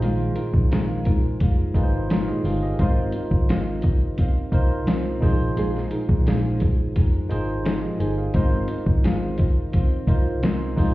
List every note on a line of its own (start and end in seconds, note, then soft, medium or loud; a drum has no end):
0.00 0.29 A#1 loud
0.00 0.37 A#2 medium
0.00 0.37 D#3 loud
0.00 0.37 G#3 loud
0.00 0.77 D#4 medium
0.00 0.36 D#4 medium
0.00 0.78 F4 medium
0.00 0.35 F4 medium
0.00 0.78 G#4 medium
0.00 0.78 C5 loud
0.00 closed hi-hat medium
0.04 0.34 A#4 medium
0.35 0.70 G#3 soft
0.35 0.70 D#4 soft
0.35 0.71 F4 medium
0.35 0.71 A#4 medium
0.35 closed hi-hat medium
0.53 1.36 A#1 medium
0.53 kick loud
0.70 1.06 A#2 medium
0.70 1.06 D#3 loud
0.70 1.06 G#3 loud
0.70 1.06 D#4 loud
0.70 1.06 F4 loud
0.70 1.04 A#4 loud
0.70 snare loud
0.70 closed hi-hat medium
1.05 1.40 G#3 medium
1.05 1.41 D#4 medium
1.05 1.41 F4 medium
1.05 1.41 A#4 medium
1.05 kick loud
1.05 closed hi-hat medium
1.40 1.69 F1 medium
1.40 1.75 G#3 medium
1.40 1.76 D#4 medium
1.40 1.75 F4 medium
1.40 1.74 A#4 medium
1.40 kick medium
1.40 closed hi-hat loud
1.74 2.30 G#1 medium
1.74 2.58 D#4 medium
1.74 2.10 D#4 medium
1.74 2.09 F4 medium
1.74 2.11 F4 medium
1.74 2.10 G#4 medium
1.74 2.10 A#4 medium
1.74 1.83 B4 medium
1.74 kick medium
1.74 closed hi-hat medium
1.79 2.10 G#3 soft
1.83 2.14 C5 loud
2.09 2.45 A#2 medium
2.09 2.45 D#3 medium
2.09 2.46 G#3 medium
2.09 2.46 D#4 medium
2.09 2.27 F4 medium
2.09 2.45 F4 medium
2.09 2.44 A#4 medium
2.09 2.26 C#5 medium
2.09 snare loud
2.09 closed hi-hat medium
2.28 2.44 G4 medium
2.28 2.44 D#5 medium
2.44 2.72 G1 loud
2.44 2.81 D#4 medium
2.44 2.80 F4 medium
2.44 2.62 G#4 medium
2.44 2.80 A#4 medium
2.44 2.62 F5 medium
2.44 open hi-hat soft
2.48 2.79 G#3 medium
2.63 2.96 G4 medium
2.63 2.95 D#5 medium
2.79 3.07 G#1 loud
2.79 3.15 G#3 medium
2.79 3.15 C4 loud
2.79 3.90 D#4 medium
2.79 3.90 F4 medium
2.79 3.15 F4 loud
2.79 3.91 A#4 medium
2.79 3.91 C5 loud
2.79 3.15 C5 medium
2.79 3.13 D#5 medium
2.79 kick loud
2.79 closed hi-hat medium
3.12 3.49 D#5 medium
3.12 closed hi-hat medium
3.17 3.49 F4 medium
3.17 3.49 C5 medium
3.31 4.49 G#1 medium
3.31 kick loud
3.49 3.84 G#3 medium
3.49 3.84 C4 loud
3.49 3.84 F4 loud
3.49 3.84 C5 loud
3.49 3.82 D#5 loud
3.49 snare loud
3.49 closed hi-hat medium
3.82 4.19 C5 medium
3.82 4.18 D#5 medium
3.82 kick loud
3.82 closed hi-hat medium
3.87 4.18 F4 medium
4.17 4.53 C4 medium
4.17 4.53 F4 medium
4.17 4.53 C5 medium
4.17 4.51 D#5 medium
4.17 kick medium
4.17 closed hi-hat medium
4.52 4.80 C2 medium
4.52 5.20 D#4 medium
4.52 5.20 F4 medium
4.52 4.86 F4 medium
4.52 5.23 A#4 medium
4.52 4.87 C5 medium
4.52 5.22 C5 loud
4.52 4.87 D#5 medium
4.52 kick medium
4.52 closed hi-hat medium
4.86 5.15 C2 medium
4.86 5.21 G#3 medium
4.86 5.22 C4 loud
4.86 5.22 F4 medium
4.86 5.23 C5 medium
4.86 5.22 D#5 loud
4.86 snare loud
4.86 closed hi-hat medium
5.21 5.50 A#1 loud
5.21 5.56 G#3 medium
5.21 6.33 D#4 medium
5.21 5.57 D#4 medium
5.21 6.33 F4 medium
5.21 6.33 G#4 medium
5.21 5.57 G#4 medium
5.21 5.57 A#4 medium
5.21 6.34 C5 loud
5.21 kick medium
5.21 open hi-hat soft
5.57 5.85 A#1 loud
5.57 5.92 A#2 medium
5.57 5.92 F3 medium
5.57 5.92 G#3 medium
5.57 5.92 D#4 medium
5.57 5.91 G#4 loud
5.57 5.90 A#4 medium
5.57 closed hi-hat medium
5.77 snare soft
5.91 6.26 G#3 medium
5.91 6.26 D#4 medium
5.91 6.26 G#4 medium
5.91 6.26 A#4 medium
5.91 closed hi-hat medium
6.09 6.92 A#1 medium
6.09 kick loud
6.26 6.61 A#2 loud
6.26 6.61 F3 loud
6.26 6.61 G#3 loud
6.26 6.61 D#4 loud
6.26 6.60 G#4 loud
6.26 6.59 A#4 loud
6.26 snare loud
6.26 closed hi-hat medium
6.60 6.94 G#3 soft
6.60 6.95 D#4 medium
6.60 6.96 G#4 medium
6.60 6.96 A#4 medium
6.60 kick medium
6.60 closed hi-hat medium
6.95 7.24 F1 medium
6.95 7.30 G#3 medium
6.95 7.30 D#4 medium
6.95 7.29 G#4 medium
6.95 7.28 A#4 medium
6.95 kick medium
6.95 closed hi-hat loud
7.29 7.86 G#1 loud
7.29 7.63 G#3 soft
7.29 8.13 D#4 medium
7.29 7.63 D#4 medium
7.29 8.13 F4 medium
7.29 7.64 G#4 medium
7.29 7.66 G#4 medium
7.29 7.65 A#4 medium
7.29 7.66 C5 loud
7.29 closed hi-hat medium
7.64 7.99 A#2 medium
7.64 7.99 F3 medium
7.64 8.00 G#3 medium
7.64 8.00 D#4 medium
7.64 7.99 G#4 loud
7.64 7.98 A#4 loud
7.64 snare loud
7.64 closed hi-hat medium
7.82 7.99 G4 medium
7.82 7.99 D#5 medium
7.99 8.28 G1 medium
7.99 8.33 G#3 medium
7.99 8.34 D#4 medium
7.99 8.35 G#4 medium
7.99 8.34 A#4 medium
7.99 8.17 C5 medium
7.99 8.16 G#5 medium
7.99 closed hi-hat medium
8.18 8.51 G#4 soft
8.18 8.51 F5 medium
8.34 8.62 G#1 medium
8.34 8.69 G#3 medium
8.34 8.69 C4 medium
8.34 9.45 D#4 loud
8.34 9.45 F4 medium
8.34 8.69 F4 medium
8.34 9.46 A#4 medium
8.34 8.68 C5 medium
8.34 9.46 C5 loud
8.34 8.67 D#5 loud
8.34 kick loud
8.34 closed hi-hat medium
8.68 9.03 F4 medium
8.68 9.04 C5 medium
8.68 9.03 D#5 medium
8.68 closed hi-hat medium
8.86 10.04 G#1 medium
8.86 kick loud
9.04 9.38 G#3 medium
9.04 9.39 C4 loud
9.04 9.39 F4 loud
9.04 9.38 C5 loud
9.04 9.37 D#5 loud
9.04 snare medium
9.04 closed hi-hat medium
9.38 9.72 F4 medium
9.38 9.73 C5 medium
9.38 9.73 D#5 medium
9.38 kick loud
9.38 closed hi-hat medium
9.72 10.07 C4 medium
9.72 10.08 F4 medium
9.72 10.08 C5 medium
9.72 10.07 D#5 medium
9.72 kick medium
9.72 closed hi-hat medium
10.07 10.35 C2 loud
10.07 10.75 D#4 medium
10.07 10.76 F4 medium
10.07 10.78 A#4 medium
10.07 10.77 C5 medium
10.07 10.43 C5 medium
10.07 10.43 D#5 medium
10.07 kick medium
10.07 closed hi-hat medium
10.12 10.42 F4 medium
10.42 10.70 C2 medium
10.42 10.77 G#3 medium
10.42 10.78 C4 loud
10.42 10.78 F4 loud
10.42 10.78 C5 loud
10.42 10.77 D#5 loud
10.42 snare loud
10.42 closed hi-hat medium
10.76 10.94 A#1 loud
10.76 10.94 G#3 medium
10.76 10.94 D#4 medium
10.76 10.94 F4 medium
10.76 10.94 G#4 medium
10.76 10.94 A#4 medium
10.76 10.94 C5 loud
10.76 kick medium
10.76 open hi-hat medium